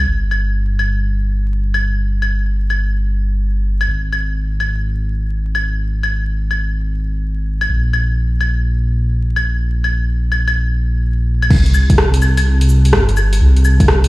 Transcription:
0.07 detuned saw bass G1
0.31 claves
0.79 claves
1.74 claves
2.22 claves
2.70 claves
3.81 claves
3.88 detuned saw bass G#1
4.12 claves
4.60 claves
5.55 claves
6.03 claves
6.51 claves
7.61 claves
7.69 detuned saw bass A#1
7.93 claves
8.40 claves
9.36 claves
9.84 claves
10.32 claves
10.48 claves
11.42 claves
11.50 detuned saw bass C2, kick, crash
11.66 closed hi-hat
11.74 cabasa, claves
11.90 kick, closed hi-hat
11.98 cross-stick
12.14 closed hi-hat
12.22 cabasa, claves
12.37 closed hi-hat, claves
12.61 closed hi-hat
12.69 cabasa
12.85 closed hi-hat
12.92 detuned saw bass G1, cross-stick
13.09 closed hi-hat
13.17 cabasa, claves
13.33 closed hi-hat
13.41 detuned saw bass C2
13.56 closed hi-hat
13.65 cabasa, claves
13.80 kick, closed hi-hat
13.88 cross-stick
14.04 closed hi-hat

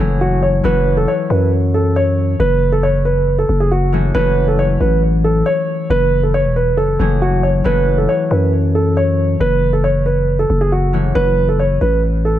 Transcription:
Already playing: grand piano A4
0.00 808-style bass F#1, harp E3 F#3 A3 C#4 G#4
0.21 grand piano F#4
0.42 grand piano C#5
0.64 808-style bass F#1, harp E3 F#3 A3 C#4 F#4, grand piano B4
0.97 grand piano A4
1.08 grand piano C#5
1.30 808-style bass F#2, grand piano B4
1.74 grand piano A4
1.96 grand piano C#5
2.40 808-style bass F#1, grand piano B4
2.72 grand piano A4
2.83 grand piano C#5
3.05 grand piano B4
3.39 grand piano A4
3.49 808-style bass F#1
3.60 grand piano G#4
3.71 grand piano F#4
3.92 harp E3 F#3 A3 C#4 F#4
4.15 808-style bass F#1, harp E3 F#3 A3 C#4 F#4, grand piano B4
4.48 grand piano A4
4.59 grand piano C#5
4.80 808-style bass A1, grand piano B4
5.24 grand piano A4
5.46 grand piano C#5
5.90 808-style bass F#1, grand piano B4
6.23 grand piano A4
6.34 grand piano C#5
6.45 808-style bass E1
6.56 grand piano B4
6.72 808-style bass F#1
6.77 grand piano A4
6.99 808-style bass F#1, harp E3 F#3 A3 C#4 G#4
7.22 grand piano F#4
7.43 grand piano C#5
7.64 808-style bass F#1, harp E3 F#3 A3 C#4 F#4, grand piano B4
7.98 grand piano A4
8.09 grand piano C#5
8.31 808-style bass F#2, grand piano B4
8.75 grand piano A4
8.97 grand piano C#5
9.40 808-style bass F#1, grand piano B4
9.73 grand piano A4
9.84 grand piano C#5
10.06 grand piano B4
10.39 grand piano A4
10.50 808-style bass F#1
10.61 grand piano G#4
10.72 grand piano F#4
10.93 harp E3 F#3 A3 C#4 F#4
11.15 808-style bass F#1, grand piano B4
11.49 grand piano A4
11.59 grand piano C#5
11.81 808-style bass A1, grand piano B4
12.25 grand piano A4

